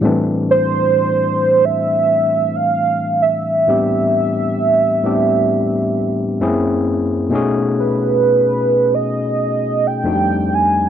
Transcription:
X:1
M:4/4
L:1/16
Q:"Swing 16ths" 1/4=66
K:Am
V:1 name="Soft synth lead"
z2 c4- c e4 f3 e2- | e12- e2 z2 | z2 B4- B ^d4 g3 ^g2 |]
V:2 name="Tine electric piano"
[A,,E,G,A,CD]16 | [A,,G,B,CDG]6 [A,,G,B,CDG]6 [^F,,^G,^A,C^CE^G]4 | [B,,A,^C^D^F^G]12 [=F,,=G,A,=C=D_E^F]4 |]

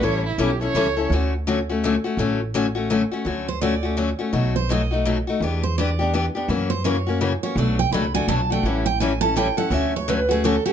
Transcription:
X:1
M:3/4
L:1/16
Q:"Swing" 1/4=167
K:D
V:1 name="Steel-string acoustic guitar"
z12 | z12 | z12 | z2 =c2 d4 z4 |
z2 =c2 ^d4 z4 | z2 =c2 d4 z4 | z2 =c2 ^c4 z2 c2 | d2 g2 b2 ^g2 a2 =g2 |
f2 g2 ^g2 a2 =g2 f2 | e2 c2 B2 ^G2 A2 =G2 |]
V:2 name="Violin"
c2 E2 G2 c6 | z12 | z12 | z12 |
z12 | z12 | z12 | z12 |
z12 | z12 |]
V:3 name="Steel-string acoustic guitar"
[E,G,CEA]2 z2 [E,G,CEA] z [CEA]2 [E,G,CEA] z [CEA]2 | [D,F,A,CF]2 z2 [D,F,A,CF] z [A,CF]2 [D,F,A,CF] z [A,CF]2 | [D,F,A,CF]2 z2 [D,F,A,CF] z [A,CF]2 [D,F,A,CF] z [A,CF]2 | [D,F,A,CF]2 z2 [D,F,A,CF] z [A,CF]2 [D,F,A,CF] z [A,CF]2 |
[B,,F,A,^DF]2 z2 [B,,F,A,DF] z [A,DF]2 [B,,F,A,DF] z [A,DF]2 | [E,B,DG]2 z2 [E,B,DG] z [B,DG]2 [E,B,DG] z [B,DG]2 | [C,E,^A,CF]2 z2 [C,E,A,CF] z [A,CF]2 [C,E,A,CF] z [A,CF]2 | [B,,F,A,DF]2 z2 [B,,F,A,DF] z [A,DF]2 [B,,F,A,DF] z [A,DF]2 |
[E,G,CEA]2 z2 [E,G,CEA] z [CEA]2 [E,G,CEA] z [CEA]2 | [D,F,A,CF]2 z2 [D,F,A,CF] z [A,CF]2 [D,F,A,CF] z [A,CF]2 |]
V:4 name="Upright bass" clef=bass
A,,,4 B,,,4 C,,4 | D,,12 | A,,,12 | D,,12 |
B,,,12 | E,,12 | F,,12 | B,,,4 C,,4 B,,,4 |
A,,,12 | D,,12 |]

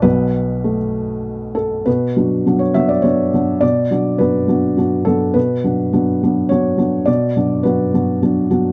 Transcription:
X:1
M:3/4
L:1/16
Q:1/4=103
K:Bm
V:1 name="Felt piano"
B8- B2 A2 | B4- B c e d c4 | d4 B4 z2 A2 | B8 c4 |
d4 B4 z4 |]
V:2 name="Felt piano"
[B,,,B,,F,]4 A,8 | B,,2 [F,B,D]2 [F,B,D]2 [F,B,D]2 [F,B,D]2 [F,B,D]2 | B,,2 [F,B,D]2 [F,B,D]2 [F,B,D]2 [F,B,D]2 [F,B,D]2 | B,,2 [F,B,D]2 [F,B,D]2 [F,B,D]2 [F,B,D]2 [F,B,D]2 |
B,,2 [F,B,D]2 [F,B,D]2 [F,B,D]2 [F,B,D]2 [F,B,D]2 |]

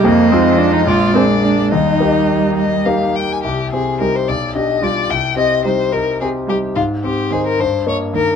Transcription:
X:1
M:6/8
L:1/16
Q:3/8=72
K:Eb
V:1 name="Violin"
e6 d6 | e6 e2 f2 g a | [K:Cm] G2 A2 B c d2 e2 d2 | g2 e2 c2 B2 A2 G2 |
F2 G2 A B c2 _d2 B2 |]
V:2 name="Grand piano"
F,,2 [A,EF]4 B,,,2 [B,DA]4 | E,,2 [B,EG]6 [B,EG]4 | [K:Cm] C,,2 [CG]2 [EG]2 =B,,,2 [DG]2 [FG]2 | C,,2 [CG]2 [EG]2 [EG]2 [CG]2 [EG]2 |
A,,2 [Cc]2 [Ec]2 G,,2 [B,e]2 [Ee]2 |]
V:3 name="Viola"
B,2 C2 D E F2 C2 D2 | E8- E2 z2 | [K:Cm] z4 E2 z4 F2 | z4 E2 z4 E2 |
z4 C2 z4 B,2 |]
V:4 name="Cello" clef=bass
F,6 A,6 | G,8- G,2 z2 | [K:Cm] z4 G,2 z4 G,2 | z4 G,2 z4 G,2 |
z4 E,2 z4 E,2 |]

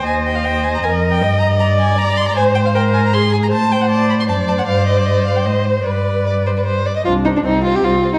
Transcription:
X:1
M:3/4
L:1/16
Q:1/4=155
K:Cm
V:1 name="Violin"
a2 g f g2 a b a3 g- | g2 b2 b2 a2 b2 c' b | a2 g f g2 a b c'2 a b | =a2 g ^f a2 =b c' a2 a f |
f2 e d e2 f g e2 c2 | d8 z4 | c2 c2 c2 c2 c2 c2 |]
V:2 name="Viola"
e12- | e4 d8 | c4 B4 A4 | c4 d4 c4- |
c12 | =B8- B2 z2 | D4 C8 |]
V:3 name="Violin"
c4 c4 B4 | e8 d4 | c8 A4 | c8 d4 |
d8 c4 | =B4 d2 c B c2 d e | F2 E D E2 F G F3 E |]
V:4 name="Cello" clef=bass
E,,8 F,,4 | G,,12 | A,,12 | =A,,8 ^F,,4 |
G,,8 A,,4 | G,,8- G,,2 z2 | C,,4 C,,4 C,,4 |]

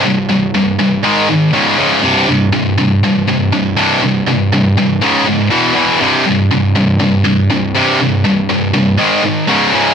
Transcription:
X:1
M:4/4
L:1/8
Q:1/4=121
K:none
V:1 name="Distorted electric guitar" clef=bass
[C,,G,,] [C,,G,,] [C,,G,,] [C,,G,,] [_A,,_E,_A,] [A,,E,] [_D,,A,,_D,] [D,,A,,D,] | [C,,G,,C,] [C,,G,,] [C,,G,,] [C,,G,,] [C,,G,,] [C,,G,,] [C,,G,,] [C,,G,,C,] | [C,,G,,] [C,,G,,] [C,,G,,] [C,,G,,] [_D,,_A,,_D,] [D,,A,,] [E,,B,,E,] [E,,B,,E,] | [C,,G,,C,] [C,,G,,] [C,,G,,] [C,,G,,] [C,,G,,] [C,,G,,] [C,,G,,] [C,,G,,C,] |
[C,,G,,] [C,,G,,] [C,,G,,] [C,,G,,] [_A,,_E,_A,] [A,,E,] [_D,,A,,_D,] [D,,A,,D,] |]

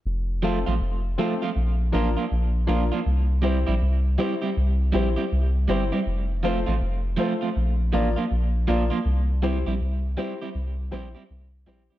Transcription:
X:1
M:4/4
L:1/16
Q:"Swing 16ths" 1/4=80
K:Cmix
V:1 name="Upright piano"
z2 [CFA] z3 [CFA] z3 [DFB] z3 [DFB] [FB] | z2 [EGc] z3 [EGc] z3 [EGc] z3 [EGc] [Gc] | z2 [FAc] z3 [FAc] z3 [FBd] z3 [FBd] [Bd] | z2 [EGc] z3 [EGc] z3 [EGc] z3 [EGc] [Gc] |]
V:2 name="Clean electric guitar"
z2 [F,A,CF] [F,A,CF] z2 [F,A,CF] [F,A,CF] z2 [F,B,DF] [F,B,DF] z2 [F,B,DF] [F,B,DF] | z2 [G,CEG] [G,CEG] z2 [G,CEG] [G,CEG] z2 [G,CEG] [G,CEG] z2 [G,CEG] [G,CEG] | z2 [F,A,CF] [F,A,CF] z2 [F,A,CF] [F,A,CF] z2 [F,B,DF] [F,B,DF] z2 [F,B,DF] [F,B,DF] | z2 [G,CEG] [G,CEG] z2 [G,CEG] [G,CEG] z2 [G,CEG] [G,CEG] z2 [G,CEG] [G,CEG] |]
V:3 name="Sub bass" clef=bass
F,,,3 A,,, F,,,2 z2 B,,,2 A,,, z B,,,2 B,,, z | C,,3 B,,, C,,2 z2 C,,2 B,,, z C,,2 G,,, z | F,,,3 A,,, F,,,2 z2 B,,,2 A,,, z B,,,2 B,,, z | C,,3 B,,, C,,2 z2 C,,2 B,,, z C,,2 B,,, z |]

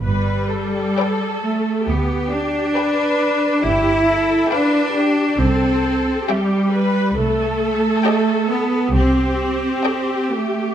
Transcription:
X:1
M:4/4
L:1/8
Q:1/4=67
K:G
V:1 name="Violin section"
z2 g2 z2 g2 | z2 g2 z2 g2 | z2 g2 z2 g2 |]
V:2 name="Violin section"
z2 [Bd]2 z2 [Bd]2 | z2 [B=f]2 z2 [Ge]2 | z2 [G_e]2 z2 [Ae]2 |]
V:3 name="Viola section"
B A3 G2 B2 | G A B G A2 G B | A4 G4 |]
V:4 name="Cello section"
G,3 A, B, D3 | E2 D2 C2 G,2 | A,3 B, C3 A, |]
V:5 name="Double bass section" clef=bass
G,,,2 z2 D,,2 z2 | G,,,2 z2 C,,2 z2 | C,,2 z2 C,,2 z2 |]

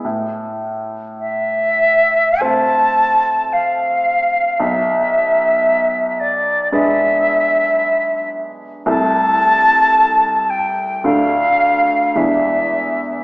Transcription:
X:1
M:4/4
L:1/8
Q:1/4=55
K:Am
V:1 name="Flute"
z2 e2 a2 f2 | e3 d e3 z | a3 g f2 e2 |]
V:2 name="Grand piano"
A,,4 [A,Cc]4 | B,,,4 [^G,DB]4 | [C,,A,EA]4 [D,,A,DA]2 [E,,^G,DE]2 |]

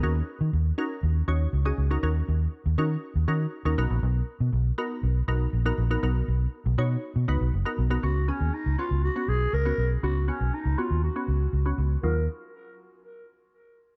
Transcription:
X:1
M:4/4
L:1/16
Q:1/4=120
K:Ebm
V:1 name="Clarinet"
z16 | z16 | z16 | z16 |
G2 D2 E2 F2 G2 A2 B3 z | G2 D2 E2 F2 G6 z2 | B2 z12 z2 |]
V:2 name="Synth pluck"
[DEGB]4- [DEGB] z [DEGB]3 z [DEGd]2 z [DEGA]2 [DEGB] | [DEGB]4- [DEGB] z [DEGB]3 z [DEGB]2 z [DEGB] [=B,^D^F^A]2- | [=B,^D^F^A]4 z2 [B,DFA]3 z [B,DFA]2 z [B,DFA]2 [B,DFA] | [=B,^D^F^A]4- [B,DFA] z [B,DF_d]3 z [B,^DF=B]2 z [B,DFA]2 [B,DFA] |
[CDG]2 [CDA]3 z [CDG]2 z [CDG]3 z [CDG]2 z | [CDG]2 [CDG]3 z [CDG]2 z [CDG]3 z [CDG]2 z | [G,EF]2 z12 z2 |]
V:3 name="Fingered electric bass" clef=bass
E,,2 z E, E,,2 z2 E,,2 E,,2 D,,2 D,,2 | E,,2 E,,2 z E,, E,2 z E,, E,2 z E,, =B,,, ^A,,, | =B,,,2 z =B,, B,,,2 z2 B,,,2 B,,,2 ^A,,,2 A,,,2 | =B,,,2 B,,,2 z B,,, =B,,2 z B,, D,, B,,, ^F,,, z B,,,2 |
D,,3 E,, z D,, z D,,2 z C,,2 D,,2 C,,2 | D,,3 C,, z D,, z E,,2 z D,,2 D,,2 D,,2 | E,,2 z12 z2 |]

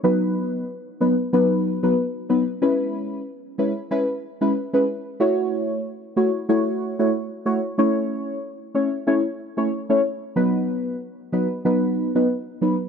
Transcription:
X:1
M:4/4
L:1/16
Q:"Swing 16ths" 1/4=93
K:E
V:1 name="Synth stab"
[F,B,DB]4 z2 [F,B,DB] z [F,B,DB]3 [F,B,DB] z2 [F,B,DB] z | [G,CEB]4 z2 [G,CEB] z [G,CEB] z2 [G,CEB] z [G,CEB] z2 | [A,EFc]4 z2 [A,EFc] z [A,EFc]3 [A,EFc] z2 [A,EFc] z | [A,CEc]4 z2 [A,CEc] z [A,CEc] z2 [A,CEc] z [A,CEc] z2 |
[F,B,DB]4 z2 [F,B,DB] z [F,B,DB]3 [F,B,DB] z2 [F,B,DB] z |]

